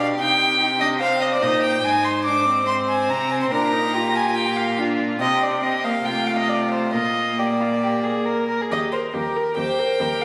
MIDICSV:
0, 0, Header, 1, 5, 480
1, 0, Start_track
1, 0, Key_signature, -3, "major"
1, 0, Tempo, 411241
1, 235, Time_signature, 4, 2, 24, 8
1, 3114, Tempo, 423430
1, 6954, Tempo, 443131
1, 9834, Tempo, 428878
1, 11548, End_track
2, 0, Start_track
2, 0, Title_t, "Violin"
2, 0, Program_c, 0, 40
2, 232, Note_on_c, 0, 79, 85
2, 930, Note_off_c, 0, 79, 0
2, 937, Note_on_c, 0, 75, 83
2, 1031, Note_off_c, 0, 75, 0
2, 1170, Note_on_c, 0, 77, 89
2, 1407, Note_off_c, 0, 77, 0
2, 1414, Note_on_c, 0, 75, 75
2, 1464, Note_off_c, 0, 75, 0
2, 1547, Note_on_c, 0, 74, 78
2, 1658, Note_on_c, 0, 75, 87
2, 1676, Note_off_c, 0, 74, 0
2, 1892, Note_off_c, 0, 75, 0
2, 1899, Note_on_c, 0, 79, 78
2, 2150, Note_on_c, 0, 80, 88
2, 2167, Note_off_c, 0, 79, 0
2, 2386, Note_on_c, 0, 84, 77
2, 2404, Note_off_c, 0, 80, 0
2, 2616, Note_off_c, 0, 84, 0
2, 2623, Note_on_c, 0, 86, 81
2, 3101, Note_off_c, 0, 86, 0
2, 3111, Note_on_c, 0, 84, 89
2, 3202, Note_off_c, 0, 84, 0
2, 3350, Note_on_c, 0, 80, 78
2, 3599, Note_on_c, 0, 82, 86
2, 3616, Note_off_c, 0, 80, 0
2, 3839, Note_on_c, 0, 80, 71
2, 3856, Note_off_c, 0, 82, 0
2, 3956, Note_off_c, 0, 80, 0
2, 3966, Note_on_c, 0, 84, 71
2, 4011, Note_off_c, 0, 84, 0
2, 4080, Note_on_c, 0, 82, 82
2, 4801, Note_on_c, 0, 80, 76
2, 4818, Note_off_c, 0, 82, 0
2, 5025, Note_on_c, 0, 79, 78
2, 5042, Note_off_c, 0, 80, 0
2, 5267, Note_on_c, 0, 77, 68
2, 5284, Note_off_c, 0, 79, 0
2, 5508, Note_off_c, 0, 77, 0
2, 5990, Note_on_c, 0, 75, 78
2, 6237, Note_on_c, 0, 74, 64
2, 6254, Note_off_c, 0, 75, 0
2, 6472, Note_on_c, 0, 75, 63
2, 6489, Note_off_c, 0, 74, 0
2, 6716, Note_on_c, 0, 77, 64
2, 6733, Note_off_c, 0, 75, 0
2, 6951, Note_on_c, 0, 79, 66
2, 6967, Note_off_c, 0, 77, 0
2, 7187, Note_on_c, 0, 77, 55
2, 7203, Note_off_c, 0, 79, 0
2, 7303, Note_off_c, 0, 77, 0
2, 7309, Note_on_c, 0, 75, 59
2, 7424, Note_on_c, 0, 74, 54
2, 7441, Note_off_c, 0, 75, 0
2, 7656, Note_off_c, 0, 74, 0
2, 7662, Note_on_c, 0, 72, 49
2, 7901, Note_off_c, 0, 72, 0
2, 7906, Note_on_c, 0, 75, 57
2, 8390, Note_on_c, 0, 74, 44
2, 8406, Note_off_c, 0, 75, 0
2, 9352, Note_off_c, 0, 74, 0
2, 9837, Note_on_c, 0, 75, 57
2, 9927, Note_off_c, 0, 75, 0
2, 10066, Note_on_c, 0, 72, 50
2, 10155, Note_off_c, 0, 72, 0
2, 10305, Note_on_c, 0, 70, 40
2, 10791, Note_off_c, 0, 70, 0
2, 10798, Note_on_c, 0, 79, 56
2, 11513, Note_on_c, 0, 77, 55
2, 11530, Note_off_c, 0, 79, 0
2, 11548, Note_off_c, 0, 77, 0
2, 11548, End_track
3, 0, Start_track
3, 0, Title_t, "Violin"
3, 0, Program_c, 1, 40
3, 0, Note_on_c, 1, 67, 55
3, 686, Note_off_c, 1, 67, 0
3, 701, Note_on_c, 1, 67, 61
3, 1166, Note_on_c, 1, 72, 60
3, 1184, Note_off_c, 1, 67, 0
3, 2135, Note_off_c, 1, 72, 0
3, 2142, Note_on_c, 1, 72, 65
3, 4065, Note_on_c, 1, 70, 53
3, 4082, Note_off_c, 1, 72, 0
3, 4557, Note_on_c, 1, 67, 59
3, 4574, Note_off_c, 1, 70, 0
3, 5518, Note_on_c, 1, 65, 51
3, 5535, Note_off_c, 1, 67, 0
3, 5994, Note_off_c, 1, 65, 0
3, 6000, Note_on_c, 1, 67, 50
3, 6444, Note_off_c, 1, 67, 0
3, 6479, Note_on_c, 1, 67, 48
3, 6947, Note_off_c, 1, 67, 0
3, 6964, Note_on_c, 1, 65, 49
3, 7890, Note_off_c, 1, 65, 0
3, 7899, Note_on_c, 1, 65, 41
3, 8380, Note_off_c, 1, 65, 0
3, 8394, Note_on_c, 1, 67, 46
3, 8481, Note_off_c, 1, 67, 0
3, 8634, Note_on_c, 1, 65, 31
3, 8721, Note_off_c, 1, 65, 0
3, 8875, Note_on_c, 1, 67, 49
3, 9103, Note_on_c, 1, 68, 44
3, 9120, Note_off_c, 1, 67, 0
3, 9338, Note_on_c, 1, 70, 50
3, 9355, Note_off_c, 1, 68, 0
3, 9580, Note_off_c, 1, 70, 0
3, 9587, Note_on_c, 1, 70, 47
3, 9730, Note_on_c, 1, 68, 37
3, 9746, Note_off_c, 1, 70, 0
3, 9840, Note_off_c, 1, 68, 0
3, 10807, Note_on_c, 1, 72, 47
3, 11291, Note_on_c, 1, 70, 40
3, 11307, Note_off_c, 1, 72, 0
3, 11548, Note_off_c, 1, 70, 0
3, 11548, End_track
4, 0, Start_track
4, 0, Title_t, "Viola"
4, 0, Program_c, 2, 41
4, 0, Note_on_c, 2, 62, 52
4, 208, Note_off_c, 2, 62, 0
4, 225, Note_on_c, 2, 63, 54
4, 695, Note_off_c, 2, 63, 0
4, 706, Note_on_c, 2, 63, 54
4, 800, Note_off_c, 2, 63, 0
4, 944, Note_on_c, 2, 62, 59
4, 1037, Note_off_c, 2, 62, 0
4, 1178, Note_on_c, 2, 60, 58
4, 1655, Note_off_c, 2, 60, 0
4, 1663, Note_on_c, 2, 63, 54
4, 2139, Note_off_c, 2, 63, 0
4, 2147, Note_on_c, 2, 63, 51
4, 2627, Note_on_c, 2, 62, 55
4, 2645, Note_off_c, 2, 63, 0
4, 2874, Note_on_c, 2, 60, 60
4, 2891, Note_off_c, 2, 62, 0
4, 3116, Note_off_c, 2, 60, 0
4, 3121, Note_on_c, 2, 60, 57
4, 4074, Note_on_c, 2, 62, 53
4, 4091, Note_off_c, 2, 60, 0
4, 4309, Note_on_c, 2, 63, 59
4, 4326, Note_off_c, 2, 62, 0
4, 4554, Note_on_c, 2, 65, 53
4, 4571, Note_off_c, 2, 63, 0
4, 5513, Note_on_c, 2, 62, 50
4, 5530, Note_off_c, 2, 65, 0
4, 5989, Note_off_c, 2, 62, 0
4, 5995, Note_on_c, 2, 60, 45
4, 6442, Note_off_c, 2, 60, 0
4, 6478, Note_on_c, 2, 60, 43
4, 6711, Note_off_c, 2, 60, 0
4, 6720, Note_on_c, 2, 58, 46
4, 6810, Note_off_c, 2, 58, 0
4, 6959, Note_on_c, 2, 57, 44
4, 7901, Note_on_c, 2, 58, 37
4, 7917, Note_off_c, 2, 57, 0
4, 8380, Note_off_c, 2, 58, 0
4, 8386, Note_on_c, 2, 58, 36
4, 9583, Note_off_c, 2, 58, 0
4, 9833, Note_on_c, 2, 67, 33
4, 10071, Note_on_c, 2, 70, 33
4, 10088, Note_off_c, 2, 67, 0
4, 10311, Note_on_c, 2, 67, 34
4, 10328, Note_off_c, 2, 70, 0
4, 10556, Note_on_c, 2, 70, 33
4, 10573, Note_off_c, 2, 67, 0
4, 10798, Note_off_c, 2, 70, 0
4, 10805, Note_on_c, 2, 67, 34
4, 11035, Note_on_c, 2, 70, 34
4, 11052, Note_off_c, 2, 67, 0
4, 11276, Note_on_c, 2, 67, 37
4, 11292, Note_off_c, 2, 70, 0
4, 11510, Note_on_c, 2, 70, 32
4, 11526, Note_off_c, 2, 67, 0
4, 11548, Note_off_c, 2, 70, 0
4, 11548, End_track
5, 0, Start_track
5, 0, Title_t, "Cello"
5, 0, Program_c, 3, 42
5, 0, Note_on_c, 3, 47, 61
5, 218, Note_off_c, 3, 47, 0
5, 225, Note_on_c, 3, 48, 66
5, 1656, Note_on_c, 3, 46, 58
5, 1674, Note_off_c, 3, 48, 0
5, 2135, Note_off_c, 3, 46, 0
5, 2142, Note_on_c, 3, 44, 67
5, 3590, Note_on_c, 3, 48, 57
5, 3607, Note_off_c, 3, 44, 0
5, 4057, Note_off_c, 3, 48, 0
5, 4064, Note_on_c, 3, 46, 61
5, 5948, Note_off_c, 3, 46, 0
5, 5988, Note_on_c, 3, 48, 55
5, 6907, Note_off_c, 3, 48, 0
5, 6948, Note_on_c, 3, 48, 46
5, 7902, Note_on_c, 3, 46, 41
5, 7919, Note_off_c, 3, 48, 0
5, 9610, Note_off_c, 3, 46, 0
5, 9833, Note_on_c, 3, 39, 47
5, 10234, Note_off_c, 3, 39, 0
5, 10313, Note_on_c, 3, 39, 43
5, 10729, Note_off_c, 3, 39, 0
5, 10798, Note_on_c, 3, 39, 47
5, 11198, Note_off_c, 3, 39, 0
5, 11274, Note_on_c, 3, 39, 49
5, 11548, Note_off_c, 3, 39, 0
5, 11548, End_track
0, 0, End_of_file